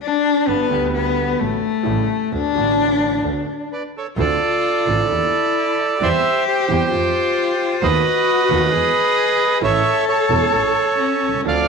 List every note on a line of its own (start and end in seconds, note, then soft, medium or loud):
0.03 0.49 D4 loud
0.48 0.67 G1 medium
0.48 0.67 G2 medium
0.48 0.67 D3 soft
0.48 0.67 G3 soft
0.48 0.93 B3 loud
0.48 0.67 B3 soft
0.48 0.67 G4 medium
0.69 1.36 D2 medium
0.69 1.36 D3 medium
0.69 1.35 G3 medium
0.69 1.36 B3 medium
0.69 1.37 G4 medium
0.94 1.41 B3 medium
1.38 1.58 A1 medium
1.38 1.59 A1 medium
1.38 1.58 A2 medium
1.38 1.58 D3 medium
1.38 1.58 F#3 soft
1.38 1.58 A3 soft
1.38 2.34 A3 medium
1.38 1.59 F#4 medium
1.83 2.04 A1 medium
1.83 2.05 A1 loud
1.83 2.04 A2 medium
1.83 2.04 C#3 medium
1.83 2.04 G3 medium
1.83 2.04 A3 medium
1.83 2.04 E4 medium
2.32 2.51 D2 medium
2.32 2.51 D3 medium
2.32 2.51 A3 soft
2.32 2.51 B3 soft
2.32 3.70 D4 loud
2.32 2.51 F#4 medium
2.53 3.20 A1 medium
2.53 3.21 A1 medium
2.53 3.21 A2 medium
2.53 3.19 D3 medium
2.53 3.20 A3 medium
2.53 3.21 B3 medium
2.58 3.22 F#4 medium
3.24 3.43 D2 medium
3.24 3.44 D3 medium
3.24 3.44 A3 soft
3.24 3.44 B3 soft
3.24 3.44 F#4 medium
3.72 3.82 B4 medium
3.72 3.83 D5 medium
3.97 4.07 A4 medium
3.97 4.07 C#5 medium
4.17 4.36 D2 loud
4.17 4.36 D2 medium
4.17 4.36 D3 medium
4.17 4.36 A3 medium
4.17 4.36 C4 medium
4.17 5.05 F4 loud
4.17 4.37 F4 medium
4.17 5.98 A4 medium
4.17 6.09 D5 loud
4.86 5.06 A1 medium
4.86 5.06 A2 medium
4.86 5.06 D3 medium
4.86 5.06 A3 medium
4.86 5.06 C4 medium
4.86 5.07 F4 medium
5.09 5.29 E2 medium
5.09 5.29 E3 medium
5.09 5.29 A#3 medium
5.09 5.29 D4 medium
5.09 5.97 E4 loud
5.09 5.29 G4 medium
6.00 6.20 E2 loud
6.00 6.20 E2 medium
6.00 6.20 E3 loud
6.00 6.20 G3 medium
6.00 6.20 C4 medium
6.00 6.88 G4 loud
6.00 6.20 G4 loud
6.00 6.44 C5 medium
6.00 6.44 E5 loud
6.48 7.79 G4 medium
6.48 7.87 C5 loud
6.68 6.88 E2 medium
6.68 6.88 E2 loud
6.68 6.88 E3 medium
6.68 6.88 G3 medium
6.68 6.88 C4 medium
6.68 6.88 G4 medium
6.91 7.10 F2 medium
6.91 7.11 F2 medium
6.91 7.10 E3 medium
6.91 7.10 F3 medium
6.91 7.10 A3 medium
6.91 7.11 C4 medium
6.91 7.84 F4 loud
6.91 7.11 F4 medium
7.81 8.01 D#2 loud
7.81 8.01 D#3 medium
7.81 8.00 A3 medium
7.81 8.01 B3 medium
7.81 8.01 F#4 medium
7.81 8.73 F#4 loud
7.81 9.58 B4 loud
7.81 9.58 D#5 loud
8.49 8.68 D#2 loud
8.49 8.68 D#3 medium
8.49 8.68 A3 medium
8.49 8.68 B3 medium
8.49 8.68 F#4 medium
8.71 8.91 E2 medium
8.71 8.91 E3 medium
8.71 8.91 G#3 medium
8.71 8.91 B3 medium
8.71 9.63 G#4 loud
9.61 9.80 A1 loud
9.61 9.81 A1 loud
9.61 9.80 A2 loud
9.61 9.80 E3 medium
9.61 9.80 A3 medium
9.61 9.81 C#4 medium
9.61 10.98 A4 loud
9.61 9.81 A4 medium
9.61 10.05 C#5 medium
9.61 10.05 E5 loud
10.09 11.41 A4 medium
10.09 11.41 C#5 loud
10.30 10.49 E1 medium
10.30 10.49 E1 loud
10.30 10.49 E2 medium
10.30 10.49 E3 medium
10.30 10.49 A3 medium
10.30 10.49 C#4 medium
10.30 10.49 A4 medium
10.52 10.71 A1 medium
10.52 10.72 A1 medium
10.52 10.72 A2 medium
10.52 10.72 E3 soft
10.52 10.72 A3 soft
10.52 10.72 A4 medium
10.99 11.45 C#4 loud
11.22 11.44 C2 soft
11.29 11.34 B1 soft
11.34 11.39 C2 medium
11.39 11.45 C#2 medium
11.44 11.64 D2 loud
11.44 11.64 D2 medium
11.44 11.64 D3 loud
11.44 11.64 F3 medium
11.44 11.64 C4 medium
11.44 11.68 D4 loud
11.44 11.64 D4 medium
11.44 11.64 A4 medium
11.48 11.68 D5 loud
11.48 11.68 F5 loud